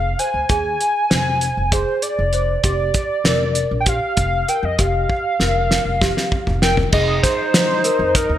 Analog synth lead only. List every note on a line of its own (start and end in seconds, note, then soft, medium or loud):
0.00 0.20 F5 medium
0.19 0.49 G#5 medium
0.50 1.74 G#5 loud
1.72 2.04 C5 medium
2.02 2.64 D5 medium
2.65 3.76 D5 medium
3.80 3.90 G5 medium
3.89 4.18 F5 medium
4.19 4.50 F5 medium
4.49 4.66 G5 medium
4.65 4.81 D#5 medium
4.80 6.62 F5 medium
6.62 6.76 G5 medium
6.93 7.21 D#5 medium
7.23 8.17 C5 medium
8.16 8.38 A#4 medium